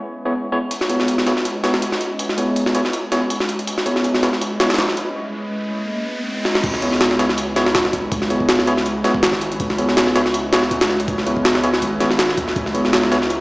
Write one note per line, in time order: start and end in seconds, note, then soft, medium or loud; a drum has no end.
0.00 0.69 G#3 medium
0.00 0.69 C#4 medium
0.00 0.69 E4 medium
0.00 0.69 B4 medium
0.00 0.69 D#5 medium
0.25 0.32 B3 medium
0.25 0.32 E4 medium
0.25 0.32 G#4 medium
0.25 0.32 C#5 medium
0.52 0.58 B3 medium
0.52 0.58 E4 medium
0.52 0.58 G#4 medium
0.52 0.58 C#5 loud
0.71 3.65 G#3 medium
0.71 3.65 C#4 medium
0.71 3.65 E4 medium
0.71 3.65 B4 medium
0.71 3.65 D#5 medium
0.71 closed hi-hat medium
0.81 snare soft
0.89 1.25 B3 medium
0.89 1.25 E4 medium
0.89 1.25 G#4 medium
0.89 1.25 C#5 medium
0.89 closed hi-hat medium
1.00 snare soft
1.08 closed hi-hat medium
1.18 snare soft
1.26 1.32 B3 medium
1.26 1.32 E4 medium
1.26 1.32 G#4 medium
1.26 1.32 C#5 medium
1.26 snare soft
1.26 closed hi-hat medium
1.37 snare soft
1.45 closed hi-hat medium
1.64 1.72 B3 medium
1.64 1.72 E4 medium
1.64 1.72 G#4 medium
1.64 1.72 C#5 loud
1.64 snare soft
1.64 closed hi-hat medium
1.74 snare medium
1.82 closed hi-hat medium
1.92 snare soft
2.01 closed hi-hat medium
2.19 closed hi-hat medium
2.29 snare soft
2.38 2.73 B3 medium
2.38 2.73 E4 medium
2.38 2.73 G#4 medium
2.38 2.73 C#5 medium
2.38 closed hi-hat medium
2.56 closed hi-hat medium
2.66 snare medium
2.75 2.80 B3 medium
2.75 2.80 E4 medium
2.75 2.80 G#4 medium
2.75 2.80 C#5 medium
2.75 closed hi-hat medium
2.85 snare soft
2.93 closed hi-hat medium
3.12 3.20 B3 medium
3.12 3.20 E4 medium
3.12 3.20 G#4 medium
3.12 3.20 C#5 loud
3.12 snare soft
3.12 closed hi-hat medium
3.30 closed hi-hat medium
3.40 snare soft
3.49 closed hi-hat medium
3.59 closed hi-hat soft
3.67 6.62 G#3 medium
3.67 6.62 C#4 medium
3.67 6.62 E4 medium
3.67 6.62 B4 medium
3.67 6.62 D#5 medium
3.67 closed hi-hat medium
3.67 riser medium
3.78 snare soft
3.86 4.21 B3 medium
3.86 4.21 E4 medium
3.86 4.21 G#4 medium
3.86 4.21 C#5 medium
3.86 closed hi-hat medium
3.96 snare soft
4.04 closed hi-hat medium
4.14 snare soft
4.23 4.28 B3 medium
4.23 4.28 E4 medium
4.23 4.28 G#4 medium
4.23 4.28 C#5 medium
4.23 snare medium
4.23 closed hi-hat medium
4.33 snare soft
4.41 closed hi-hat medium
4.60 4.68 B3 medium
4.60 4.68 E4 medium
4.60 4.68 G#4 medium
4.60 4.68 C#5 loud
4.60 snare loud
4.60 closed hi-hat medium
4.70 snare medium
4.70 closed hi-hat medium
4.74 snare medium
4.74 closed hi-hat medium
4.78 snare loud
4.78 closed hi-hat medium
4.89 snare soft
4.97 closed hi-hat medium
6.45 snare medium
6.55 snare medium
6.64 7.73 C#2 loud
6.64 kick loud
6.64 closed hi-hat medium
6.64 crash medium
6.74 snare soft
6.82 7.17 B3 medium
6.82 7.17 E4 medium
6.82 7.17 G#4 medium
6.82 7.17 C#5 medium
6.82 closed hi-hat medium
6.92 snare soft
7.01 snare loud
7.01 closed hi-hat medium
7.11 snare soft
7.19 8.10 G#3 medium
7.19 7.24 B3 medium
7.19 8.10 C#4 medium
7.19 8.10 D#4 medium
7.19 7.24 E4 medium
7.19 8.10 E4 medium
7.19 7.24 G#4 medium
7.19 8.10 B4 medium
7.19 7.24 C#5 loud
7.19 snare medium
7.19 closed hi-hat medium
7.29 snare soft
7.38 closed hi-hat medium
7.56 7.65 B3 medium
7.56 7.64 E4 medium
7.56 7.64 G#4 medium
7.56 7.64 C#5 loud
7.56 snare soft
7.56 closed hi-hat medium
7.66 snare medium
7.75 8.10 C#2 medium
7.75 snare loud
7.75 closed hi-hat medium
7.85 snare soft
7.93 kick medium
7.93 closed hi-hat medium
8.12 9.03 C#2 loud
8.12 kick loud
8.12 closed hi-hat loud
8.22 snare soft
8.30 8.65 B3 medium
8.30 8.65 E4 medium
8.30 8.65 G#4 medium
8.30 8.65 C#5 medium
8.30 closed hi-hat medium
8.40 kick medium
8.49 snare loud
8.49 closed hi-hat medium
8.59 snare medium
8.67 8.73 B3 medium
8.67 8.73 E4 medium
8.67 8.73 G#4 medium
8.67 8.73 C#5 loud
8.67 closed hi-hat medium
8.77 snare soft
8.86 closed hi-hat medium
9.04 9.13 B3 loud
9.04 9.13 E4 medium
9.04 9.13 G#4 medium
9.04 9.13 C#5 loud
9.04 snare soft
9.04 closed hi-hat medium
9.14 kick loud
9.23 9.59 G#1 medium
9.23 snare loud
9.23 closed hi-hat medium
9.33 snare soft
9.41 closed hi-hat medium
9.52 closed hi-hat soft
9.60 10.70 C#2 loud
9.60 kick loud
9.60 closed hi-hat medium
9.70 snare soft
9.78 10.13 B3 medium
9.78 10.13 E4 medium
9.78 10.13 G#4 medium
9.78 10.13 C#5 medium
9.78 closed hi-hat medium
9.89 snare soft
9.97 snare loud
9.97 closed hi-hat medium
10.07 snare soft
10.15 11.06 G#3 medium
10.15 10.21 B3 medium
10.15 11.06 C#4 medium
10.15 11.06 D#4 medium
10.15 10.21 E4 medium
10.15 11.06 E4 medium
10.15 10.21 G#4 medium
10.15 11.06 B4 medium
10.15 10.21 C#5 loud
10.15 snare medium
10.15 closed hi-hat medium
10.26 snare soft
10.34 closed hi-hat medium
10.53 10.61 B3 medium
10.53 10.61 E4 medium
10.53 10.61 G#4 medium
10.53 10.61 C#5 loud
10.53 snare loud
10.53 closed hi-hat medium
10.63 snare soft
10.71 11.07 C#2 medium
10.71 closed hi-hat medium
10.81 snare loud
10.81 closed hi-hat medium
10.90 snare soft
11.00 closed hi-hat medium
11.08 11.82 C#2 loud
11.08 kick loud
11.08 closed hi-hat loud
11.18 snare soft
11.26 11.62 B3 medium
11.26 11.62 E4 medium
11.26 11.62 G#4 medium
11.26 11.62 C#5 medium
11.26 closed hi-hat medium
11.37 kick loud
11.45 snare loud
11.45 closed hi-hat medium
11.55 snare medium
11.63 11.69 B3 medium
11.63 11.69 E4 medium
11.63 11.69 G#4 medium
11.63 11.69 C#5 loud
11.63 closed hi-hat medium
11.74 snare soft
11.82 12.39 G#1 medium
11.82 closed hi-hat medium
12.00 12.09 B3 loud
12.00 12.09 E4 medium
12.00 12.09 G#4 medium
12.00 12.09 C#5 loud
12.00 snare soft
12.00 closed hi-hat medium
12.11 snare soft
12.19 snare loud
12.19 closed hi-hat medium
12.29 snare soft
12.37 12.54 D#2 medium
12.37 kick loud
12.37 closed hi-hat medium
12.48 snare soft
12.56 13.41 C#2 loud
12.56 kick loud
12.56 closed hi-hat medium
12.66 snare soft
12.74 13.10 B3 medium
12.74 13.10 E4 medium
12.74 13.10 G#4 medium
12.74 13.10 C#5 medium
12.74 closed hi-hat medium
12.85 snare soft
12.93 snare loud
12.93 closed hi-hat medium
13.03 snare soft
13.12 13.41 G#3 medium
13.12 13.17 B3 medium
13.12 13.41 C#4 medium
13.12 13.41 D#4 medium
13.12 13.17 E4 medium
13.12 13.41 E4 medium
13.12 13.17 G#4 medium
13.12 13.41 B4 loud
13.12 13.17 C#5 loud
13.12 snare medium
13.12 closed hi-hat medium
13.22 snare soft
13.30 closed hi-hat medium